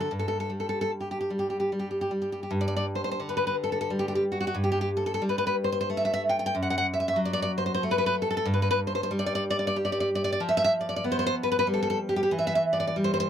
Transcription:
0.00 A4
0.11 G2
0.19 A4
0.28 A4
0.40 A4
0.50 G3
0.60 A4
0.69 A4
0.81 A4
1.01 G4
1.11 G4
1.21 G4
1.30 G3
1.39 G4
1.50 G4
1.60 G4
1.72 G3
1.79 G4
1.91 G4
2.01 G4
2.11 G3
2.22 G4
2.32 G4
2.43 G4
2.51 G2
2.61 D5
2.68 D5
2.77 D5
2.95 C5
3.04 C5
3.11 C5
3.20 D3
3.29 B4
3.37 B4
3.47 B4
3.64 A4
3.72 A4
3.81 A4
3.90 G3
3.99 G4
4.08 G4
4.15 G4
4.32 F#4
4.41 F#4
4.47 F#4
4.55 G2
4.64 G4
4.72 G4
4.81 G4
4.97 A4
5.06 A4
5.14 A4
5.22 G3
5.29 B4
5.38 B4
5.47 B4
5.64 C5
5.72 C5
5.81 C5
5.90 A3
5.97 E5
6.05 E5
6.14 E5
6.29 G5
6.39 G5
6.46 G5
6.55 F#2
6.63 F#5
6.70 F#5
6.78 F#5
6.94 E5
7.00 E5
7.08 E5
7.16 F#3
7.25 D5
7.33 D5
7.42 D5
7.58 C5
7.66 C5
7.75 C5
7.83 A3
7.91 B4
7.98 B4
8.06 B4
8.22 A4
8.31 A4
8.37 A4
8.45 G2
8.54 B4
8.62 B4
8.71 B4
8.87 C5
8.95 C5
9.03 C5
9.11 G3
9.19 D5
9.26 D5
9.35 D5
9.50 D5
9.59 D5
9.67 D5
9.76 G4
9.85 D5
9.92 D5
10.00 D5
10.15 D5
10.24 D5
10.32 D5
10.40 F3
10.49 E5
10.57 E5
10.64 E5
10.81 D5
10.89 D5
10.96 D5
11.04 B3
11.12 C5
11.19 C5
11.27 C5
11.43 B4
11.52 B4
11.59 B4
11.67 G3
11.74 A4
11.83 A4
11.90 A4
12.09 G4
12.16 G4
12.23 G4
12.31 E3
12.39 E5
12.47 E5
12.55 E5
12.73 D5
12.80 D5
12.87 D5
12.96 G3
13.04 C5
13.14 C5
13.20 C5

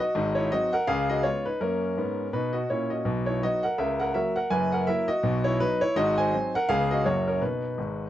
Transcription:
0.00 F#4 D#5
0.15 G#1 G#2
0.35 E4 C#5
0.52 F#3 C4 D#4 F#4 D#5
0.73 A#4 F#5
0.87 C#2 C#3 G#4 F5
1.10 F#4 D#5
1.23 G#3 B3 C#4 F4 C#5
1.46 D#4 B4
1.61 F#2 A#3 C#4 A#4
1.97 G#2 B3
2.33 B2 D#4 B4
2.53 F#4 D#5
2.70 A#2 C#4 E4 C#5
2.90 F#4 D#5
3.05 B1 B2
3.26 E4 C#5
3.43 F#3 B3 D#4 F#4 D#5
3.63 A#4 F#5
3.78 C#2 C#3 A#4 E5
4.00 A#4 F#5
4.14 F#3 A#3 F#4 A#4 E5
4.36 A#4 F#5
4.50 F#1 F#2 B4 G#5
4.72 A#4 F#5
4.87 F#3 A#3 E4 A#4 E5
5.08 F#4 D#5
5.23 B1 B2
5.44 E4 C#5
5.60 F#3 B3 D#4 B4
5.81 E4 C#5
5.96 G#1 G#2 F#4 D#5
6.18 C5 G#5
6.33 F#3 C4 D#4
6.55 A#4 F#5
6.69 C#2 C#3 G#3 B3 C#4 G#4 F5
6.91 F#4 D#5
7.05 F#1 F#2 F#3 A#3 C#4 F#4 C#5
7.28 C#4 A#4
7.42 B2 D#4 B4
7.78 G#1 G#2

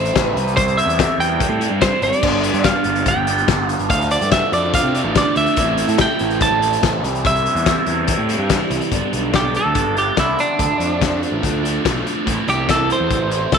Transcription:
Already playing: E3 A3 C4 E4 C5
0.05 closed hi-hat
0.15 A1 E3 A3 C4 E4, kick, snare, closed hi-hat
0.24 B4
0.35 C2 C3 G3 C4 E4, closed hi-hat
0.47 closed hi-hat
0.56 C3 G3 C4 E4 C5, kick, closed hi-hat
0.68 closed hi-hat
0.78 E5, closed hi-hat
0.86 E2, closed hi-hat
0.99 C3 G3 C4 E4, kick, snare, closed hi-hat
1.18 E2 G3 C4 E4 G5, closed hi-hat
1.40 kick, closed hi-hat
1.49 A2
1.60 G3 C4 E4, closed hi-hat
1.70 G2
1.81 C3 G3 C4 E4 C5, kick, snare, closed hi-hat
2.02 G#1 D5, closed hi-hat
2.13 closed hi-hat
2.22 G1 G2 D3 G3 B3 D4, kick, crash
2.43 closed hi-hat
2.54 G2, closed hi-hat
2.64 G2 D3 G3 B3 D4 F5, kick, snare, closed hi-hat
2.84 G1 G3 B3 D4, closed hi-hat
2.95 closed hi-hat
3.06 G5, kick, closed hi-hat
3.16 G1
3.26 G3 B3 D4, closed hi-hat
3.38 closed hi-hat
3.47 G1 D3 G3 B3 D4, kick, snare, closed hi-hat
3.69 F5, closed hi-hat
3.79 G1, closed hi-hat
3.90 D2 D3 F3 A3 D4 F5, kick, closed hi-hat
4.01 closed hi-hat
4.11 D5, closed hi-hat
4.21 G2, closed hi-hat
4.30 D3 F3 A3 D4 E5, kick, snare, closed hi-hat
4.52 F2 F3 A3 D4 D5, closed hi-hat
4.74 F5, kick, closed hi-hat
4.83 C3
4.95 F3 A3 D4, closed hi-hat
5.04 A1
5.15 D3 F3 A3 D4 D5, kick, snare, closed hi-hat
5.36 D2 E5, closed hi-hat
5.46 closed hi-hat
5.56 A1 A2 E3 A3 C4 E4, kick, closed hi-hat
5.78 closed hi-hat
5.88 A2, closed hi-hat
5.98 A2 E3 A3 C4 E4 G5, kick, snare, closed hi-hat
6.19 A1 A3 C4 E4, closed hi-hat
6.30 closed hi-hat
6.41 A5, kick, closed hi-hat
6.51 A1
6.61 A3 C4 E4, closed hi-hat
6.73 closed hi-hat
6.82 A1 E3 A3 C4 E4, kick, snare, closed hi-hat
7.02 C2 C3 E3 G3 C4 E4, closed hi-hat
7.15 closed hi-hat
7.24 C3 E3 G3 C4 E4 E5, kick, closed hi-hat
7.35 closed hi-hat
7.46 closed hi-hat
7.55 E2, closed hi-hat
7.65 C3 E3 G3 C4 E4, kick, snare, closed hi-hat
7.87 E2 G3 C4 E4, closed hi-hat
8.07 kick, closed hi-hat
8.18 A2
8.29 G3 C4 E4, closed hi-hat
8.39 G2
8.50 E3 G3 C4 E4, kick, snare, closed hi-hat
8.70 C2, closed hi-hat
8.81 closed hi-hat
8.91 G1 G2 D3 G3 B3 D4, kick, closed hi-hat
9.13 B1 G3 B3 D4, closed hi-hat
9.32 G2 D3 G3 B3 D4 G4, kick, snare, closed hi-hat
9.53 G3 B3 D4 A4, closed hi-hat
9.66 D2
9.75 G1, kick, closed hi-hat
9.95 G3 B3 D4 G4, closed hi-hat
10.16 C2 D3 G3 B3 D4 E4, kick, snare, closed hi-hat
10.39 D4, closed hi-hat
10.58 D2 D3 F3 A3 D4, kick, closed hi-hat
10.78 F2 F3 A3 D4, closed hi-hat
11.00 D3 F3 A3 D4, kick, snare, closed hi-hat
11.21 F3 A3 D4, closed hi-hat
11.32 A1
11.43 D2, kick, closed hi-hat
11.62 F3 A3 D4, closed hi-hat
11.84 B1 D3 F3 A3 D4, kick, snare, closed hi-hat
12.07 closed hi-hat
12.26 A1 A2 E3 A3 C4 E4, kick, closed hi-hat
12.48 C2 A3 C4 E4 G4, closed hi-hat
12.68 A2 E3 A3 C4 E4 A4, kick, snare, closed hi-hat
12.89 A3 C4 E4 C5, closed hi-hat
13.00 E2
13.10 A1, kick, closed hi-hat
13.30 A3 C4 E4, closed hi-hat
13.52 B1 E3 A3 C4 E4 A4, kick, snare, closed hi-hat

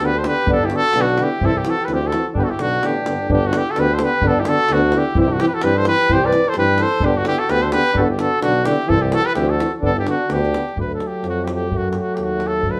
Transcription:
0.00 D2 D3 G4
0.06 B4
0.17 A4 C5
0.23 D3 B3 G4, davul high
0.28 B4
0.46 G1 D3 B3, davul low
0.50 D4 A4
0.64 E4 G4
0.70 D3 B3 F#4, davul high
0.76 A4
0.93 B1 D3 B3 D4, davul high
1.01 F#4
1.18 D3 B3 E4, davul high
1.23 G4
1.39 C2 E3 C4 E4, davul low
1.46 A4
1.55 E4 G4
1.65 E3 C4 F#4, davul high
1.70 A4
1.79 G4
1.85 D2 E3 C4 B4, davul high
1.91 E4 G4
2.02 F#4
2.07 A4
2.12 E3 C4, davul high
2.34 G1 D3 B3 D4 G4, davul low
2.39 F#4 B4
2.44 A4
2.49 E4 G4, davul high
2.57 B1 D3 B3 D4, davul high
2.61 F#4
2.73 davul high
2.81 A1 D3 B3 D4, davul high
2.86 G4
3.05 G1 D3 B3, davul high
3.28 G1 D3 B3 D4, davul low
3.34 G4
3.46 D4 F#4
3.51 D3 B3, davul high
3.57 E4 G4
3.70 F#4 A4
3.75 D2 D3 B3, davul high
3.80 G4 B4
3.93 A4 C5
3.98 D3 B3, davul high
4.03 G4 B4
4.21 G1 D3 B3 D4, davul low
4.27 A4
4.40 E4 G4
4.45 D3 B3 A4, davul high
4.50 F#4
4.69 D2 D3 B3 D4, davul high
4.73 F#4
4.92 D3 B3 E4, davul high
4.98 G4
5.15 C2 E3 C4 E4, davul low
5.20 G4
5.29 D4
5.33 F#4
5.39 E3 C4 E4 G4, davul high
5.48 G4 B4
5.53 F#4 A4
5.62 G2 E3 C4 G4 B4, davul high
5.75 A4 C5
5.85 E3 C4 G4 B4, davul high
6.09 C2 E3 C4 G4 C5, davul low
6.24 B4 D5
6.32 E3 C4, davul high
6.44 A4, davul high
6.49 C5
6.54 G2 E3 C4 G4, davul high
6.59 B4
6.68 davul high
6.78 E3 C4 A4, davul high
6.82 C5
6.91 davul high
7.00 G1 D3 B3 D4, davul low
7.05 G4
7.16 D4 F#4
7.24 D3 B3 E4 G4, davul high
7.39 F#4 A4
7.48 D2 D3 B3 G4 B4, davul high
7.61 A4 C5
7.71 D3 B3 G4 B4, davul high
7.93 G1 D3 B3 D4 G4 A4, davul low
7.98 F#4 B4
8.03 E4 A4
8.10 G4
8.18 D3 B3 F#4 A4, davul high
8.41 B1 D3 B3 D4 F#4, davul high
8.64 D3 B3 E4 G4, davul high
8.87 C2 E3 C4 E4 A4, davul low
9.01 E4 G4
9.11 E3 C4 F#4 A4, davul high
9.22 G4
9.26 B4
9.32 D2 E3 C4 E4 G4, davul high
9.47 F#4 A4
9.59 E3 C4, davul high
9.80 G1 D3 B3 D4, davul low
9.85 A4
9.93 E4, davul high
9.99 G4
10.04 D3 B3 D4, davul high
10.09 F#4
10.28 D2 D3 B3 D4, davul high
10.32 G4
10.45 davul high
10.51 D3 B3, davul high
10.68 davul high
10.74 D2 F#3 A3, davul low
10.80 B4
10.90 davul high
10.94 A4
11.00 davul high
11.07 G4
11.23 F2, davul high
11.29 F#4
11.44 G4, davul high
11.54 G4
11.69 F#2 F#3 A3, davul low
11.77 F#4
11.85 davul high
11.91 F#4 G4, davul high
12.00 F#4
12.15 D#2 G4, davul high
12.23 F#4
12.40 davul high
12.47 A4
12.63 D2 F#3, davul low
12.68 A3 B4

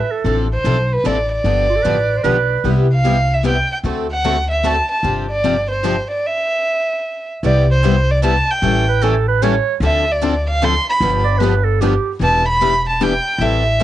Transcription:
Already playing: B4
0.11 A4
0.25 A1 C3 F3 C4 D4 A4
0.55 C5
0.65 B1 C3 F3 C4 D4 A4
0.93 B4
1.04 A1 C3 F3 C4 D4 A4 D5
1.32 D5
1.44 G1 D3 F3 B3 D4 G4
1.69 F4
1.76 A4
1.83 A1 D3 F3 B3 D4 G4 B4
2.17 C5
2.23 B1 D3 F3 B3 D4 G4 B4
2.64 C2 C3 G3 B3 E4 G4
2.94 F5
3.05 C3 G3 B3 E4 G4
3.34 E5
3.44 C3 G3 B3 E4 G4 G5
3.72 G5
3.83 D2 D3 A3 C4 F#4 A4
4.12 F#5
4.24 D3 A3 C4 F#4 A4
4.51 E5
4.64 D3 A3 C4 F#4 A4 A5
4.91 A5
5.03 G1 C3 F3 C4 D4 G4
5.31 D5
5.44 C3 F3 C4 D4 G4
5.71 C5
5.84 C3 F3 C4 D4 G4
6.11 D5
6.26 E5
7.43 C2 C3 G3 B3 E4 G4 D5
7.71 C5
7.83 C3 G3 B3 E4 G4
8.11 D5
8.22 C3 G3 B3 E4 G4 A5
8.51 G5
8.62 A1 E3 G3 C#4 E4 A4
8.88 B4
9.01 E3 G3 C#4 E4 A4
9.28 B4
9.42 E3 G3 C#4 E4 A4 C#5
9.80 D2 D3 F3 C4 D4 A4
9.86 E5
10.11 D5
10.22 D3 F3 C4 D4 A4
10.50 F5
10.62 D3 F3 C4 D4 A4 C6
10.89 B5
11.00 G1 D3 F3 B3 D4 G4
11.24 D5
11.38 B4
11.42 D3 F3 B3 D4 G4
11.64 A4
11.81 D3 F3 B3 D4 G4
12.20 E1 E3 G3 B3 D4 E4 G4 B4
12.24 A5
12.49 B5
12.61 E3 G3 B3 D4 E4 G4 B4
12.89 A5
13.01 E3 G3 B3 D4 E4 G4 B4 G5
13.39 A1 E3 G3 C4 E4 A4 E5
13.80 E3 G3

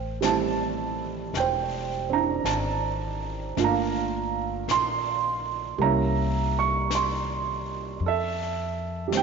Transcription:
Already playing: A1 A#4 C5 G5
0.21 G3 A3 C4 A5, brush sweep, snare, hi-hat pedal
0.25 E4
1.33 E1 G5, brush sweep, snare
1.40 C5
2.10 C4 D4 E4 A#5
2.44 G#1 A5, brush sweep, snare, hi-hat pedal
3.57 G1 A3 A#3 D4 F4, brush sweep, snare
3.64 F5 A#5
4.68 A#1 C6, brush sweep, snare, hi-hat pedal
5.78 C2 G3 A#3 C#4 A#5, brush sweep
5.83 E4 E5
6.59 C#6
6.91 brush sweep, snare, hi-hat pedal
6.95 C6
8.00 F2, brush sweep
8.06 A4 E5
9.08 G3
9.12 A3 C4, brush sweep, snare, hi-hat pedal
9.17 E3 G5

